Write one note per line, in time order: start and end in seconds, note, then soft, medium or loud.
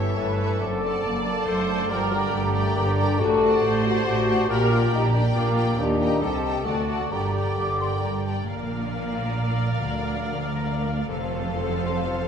0.00 0.12 G1 medium
0.00 0.12 G2 medium
0.00 0.63 G2 medium
0.00 0.17 E3 medium
0.00 0.62 G3 soft
0.00 0.17 B3 medium
0.00 0.63 E4 soft
0.00 0.16 G4 medium
0.00 0.62 G4 soft
0.00 0.17 A4 soft
0.00 0.38 A4 soft
0.00 0.17 C#5 medium
0.00 0.38 C#5 soft
0.00 0.38 E5 soft
0.00 0.16 A5 soft
0.17 0.56 G1 medium
0.17 0.56 G2 medium
0.17 0.60 E3 medium
0.17 0.61 A3 medium
0.17 0.60 A4 medium
0.17 0.60 B4 medium
0.17 0.60 C#5 soft
0.17 0.62 C#5 soft
0.17 0.60 A5 soft
0.39 1.24 A4 soft
0.39 0.60 A4 soft
0.39 0.60 C#5 soft
0.39 0.60 E5 soft
0.61 0.99 F#1 medium
0.61 1.92 F#2 medium
0.61 0.99 F#2 medium
0.61 1.45 D3 medium
0.61 1.04 C4 medium
0.61 1.04 A4 medium
0.61 1.45 A4 medium
0.61 1.45 D5 medium
0.61 1.45 A5 medium
0.82 1.92 F#3 soft
0.82 1.25 A4 soft
0.82 1.25 D5 medium
0.82 1.25 A5 soft
1.04 1.42 F#1 medium
1.04 1.42 F#2 medium
1.04 1.47 A#3 medium
1.04 2.32 D4 soft
1.04 1.47 D5 medium
1.26 1.67 A4 soft
1.26 1.67 D5 soft
1.26 1.67 A5 soft
1.46 1.85 F#1 medium
1.46 1.85 F#2 medium
1.46 1.89 D3 medium
1.46 1.90 A3 medium
1.46 1.91 A4 medium
1.46 1.89 C5 medium
1.46 1.89 D5 medium
1.46 2.74 D5 soft
1.46 1.89 A5 medium
1.68 1.89 A4 medium
1.68 1.92 A4 soft
1.68 1.89 D5 medium
1.68 1.90 A5 soft
1.90 2.28 G1 medium
1.90 3.22 G2 medium
1.90 2.28 G2 medium
1.90 2.74 D3 medium
1.90 2.12 F3 medium
1.90 2.75 G4 medium
1.90 2.10 A#4 medium
1.90 2.33 A#4 medium
1.90 2.10 D5 medium
1.90 2.74 D5 medium
1.90 2.10 G5 medium
1.90 2.75 A#5 medium
2.11 3.22 D3 soft
2.11 2.33 G3 medium
2.11 2.53 A#4 soft
2.11 2.53 D5 medium
2.11 2.53 G5 medium
2.33 2.71 G1 medium
2.33 2.71 G2 medium
2.33 2.75 A3 medium
2.33 3.63 D4 soft
2.33 3.21 G4 medium
2.54 2.96 A#4 medium
2.54 2.97 A#4 soft
2.54 2.96 D5 medium
2.54 2.97 G5 medium
2.75 3.15 G1 medium
2.75 3.15 G2 medium
2.75 3.22 D3 medium
2.75 2.87 A#3 medium
2.75 3.21 G4 medium
2.75 3.19 D5 medium
2.75 5.80 D5 soft
2.75 3.20 A#5 medium
2.87 3.21 D4 medium
2.97 3.20 A#4 medium
2.97 3.22 A#4 medium
2.97 3.20 D5 medium
2.97 3.20 G5 medium
3.20 3.59 A1 medium
3.20 4.51 A2 medium
3.20 3.59 A2 medium
3.20 4.07 C3 medium
3.20 4.06 F#4 medium
3.20 3.63 F#4 medium
3.20 3.85 A4 loud
3.20 4.05 D5 medium
3.20 4.06 A5 medium
3.42 4.51 A3 medium
3.42 3.84 C5 medium
3.42 3.84 D5 medium
3.42 3.84 F#5 medium
3.64 4.02 A1 medium
3.64 4.02 A2 medium
3.64 4.48 C5 medium
3.85 4.26 F#4 soft
3.85 3.95 F#4 medium
3.85 4.27 C5 medium
3.85 4.27 D5 medium
3.85 4.27 F#5 medium
4.06 4.45 A1 medium
4.06 4.44 A2 medium
4.06 4.51 C3 medium
4.06 4.51 F#4 medium
4.06 4.49 F#4 medium
4.06 4.51 C5 soft
4.06 4.48 D5 medium
4.06 4.49 A5 medium
4.28 4.51 F#4 medium
4.28 4.49 C5 medium
4.28 4.48 D5 medium
4.28 4.49 F#5 medium
4.49 4.87 A#1 medium
4.49 5.80 A#2 medium
4.49 5.08 A#2 medium
4.49 4.87 A#2 medium
4.49 4.70 G4 medium
4.49 5.08 G4 medium
4.49 4.69 A#4 medium
4.49 4.92 A#4 medium
4.49 5.06 D5 medium
4.49 4.69 D5 medium
4.49 4.70 G5 medium
4.49 5.13 A#5 medium
4.70 6.24 A#3 soft
4.70 4.92 F4 medium
4.70 5.12 A#4 medium
4.70 5.12 D5 medium
4.70 5.13 G5 medium
4.92 5.30 A#1 medium
4.92 5.30 A#2 medium
4.92 5.80 D4 medium
4.92 5.03 D#4 medium
4.92 5.35 G4 medium
5.05 5.14 D4 medium
5.13 5.24 D4 medium
5.13 5.55 G4 soft
5.13 5.55 A#4 medium
5.13 5.55 D5 medium
5.13 5.56 G5 medium
5.35 5.74 A#1 medium
5.35 5.73 A#2 medium
5.35 5.76 A#2 medium
5.35 5.78 A#3 medium
5.35 5.78 F4 medium
5.35 5.75 G4 medium
5.35 5.99 A#4 medium
5.35 5.80 D5 medium
5.35 5.78 A#5 medium
5.56 5.99 G4 medium
5.56 5.78 A#4 medium
5.56 5.78 D5 medium
5.56 5.78 G5 medium
5.79 6.17 D#2 medium
5.79 6.24 A#2 medium
5.79 6.23 D#3 medium
5.79 6.22 D4 medium
5.79 6.21 G4 medium
5.79 6.21 D#5 medium
5.79 6.21 A#5 medium
6.00 6.43 G4 soft
6.00 6.23 A#4 medium
6.00 6.22 A#4 medium
6.00 6.21 D#5 medium
6.00 6.20 G5 medium
6.21 6.61 C2 medium
6.21 6.67 C3 medium
6.21 6.68 C3 medium
6.21 6.66 C4 medium
6.21 6.68 G4 medium
6.21 6.66 A4 medium
6.21 6.42 A4 soft
6.21 6.67 D#5 medium
6.21 6.43 D#5 soft
6.21 6.43 G5 soft
6.21 6.64 A5 medium
6.44 6.68 G4 soft
6.44 6.65 A4 medium
6.44 6.87 A4 soft
6.44 6.66 D#5 soft
6.44 6.65 G5 medium
6.65 7.06 D2 medium
6.65 7.13 D3 medium
6.65 7.11 D3 medium
6.65 6.99 A3 medium
6.65 7.14 F#4 medium
6.65 7.12 F#4 medium
6.65 6.88 A4 soft
6.65 7.11 D5 soft
6.65 6.88 D5 soft
6.65 6.87 F#5 soft
6.65 7.11 A5 soft
6.88 7.13 F#4 soft
6.88 7.14 A4 soft
6.88 7.11 A4 soft
6.88 7.10 D5 soft
6.88 7.11 F#5 soft
7.01 7.06 A3 medium
7.11 7.53 G1 soft
7.11 7.52 G2 medium
7.11 8.50 G2 medium
7.11 8.24 D3 medium
7.11 8.24 G3 medium
7.11 8.24 G4 medium
7.11 8.26 G4 soft
7.11 7.34 A#4 soft
7.11 7.34 D5 soft
7.11 8.24 D5 medium
7.11 7.33 G5 soft
7.11 7.53 A#5 soft
7.34 8.50 D3 soft
7.34 7.79 A#4 soft
7.34 7.78 D5 soft
7.34 7.79 G5 soft
7.58 7.98 G1 medium
7.58 7.98 G2 medium
7.58 8.69 D4 soft
7.58 7.79 D6 medium
7.79 8.25 G4 soft
7.79 8.25 A#4 soft
7.79 8.25 D5 soft
7.79 8.24 G5 soft
7.79 7.86 C6 medium
8.03 8.43 G1 medium
8.03 8.43 G2 soft
8.03 8.92 A#4 soft
8.03 8.09 A#5 medium
8.25 8.50 G4 soft
8.25 8.49 A#4 soft
8.25 8.49 D5 soft
8.25 8.48 G5 soft
8.25 8.32 A5 soft
8.48 9.76 A#1 medium
8.48 9.82 A#2 medium
8.48 9.76 A#2 medium
8.48 11.07 A#4 medium
8.48 11.07 D5 medium
8.48 11.06 F5 medium
8.59 11.09 F3 soft
8.71 9.68 D4 medium
8.82 9.57 F4 soft
8.93 9.46 A#4 medium
9.04 9.35 D5 soft
9.15 10.44 F5 soft
9.26 10.55 A#5 medium
9.36 10.33 D5 medium
9.47 10.22 A#4 medium
9.58 10.11 F4 medium
9.69 10.00 D4 soft
9.80 11.08 D2 medium
9.80 11.12 D3 medium
9.91 11.12 A#3 soft
10.02 10.99 D4 medium
10.13 10.88 F4 medium
10.24 10.77 A#4 medium
10.34 10.65 D5 medium
10.45 11.64 F5 medium
10.56 11.12 A#5 medium
10.67 11.12 D5 medium
10.78 11.12 A#4 medium
10.89 11.31 F4 medium
11.00 11.12 D4 medium
11.10 12.28 F1 medium
11.10 12.28 F2 medium
11.10 12.28 F3 medium
11.10 12.28 A4 medium
11.10 12.28 C5 medium
11.10 12.28 F5 medium
11.21 12.28 C4 medium
11.32 12.27 F4 medium
11.43 12.17 A4 medium
11.54 12.06 C5 medium
11.65 11.96 F5 medium
11.76 12.28 A5 medium
11.86 12.28 C6 medium
11.97 12.28 F5 medium
12.07 12.28 C5 medium
12.18 12.28 A4 medium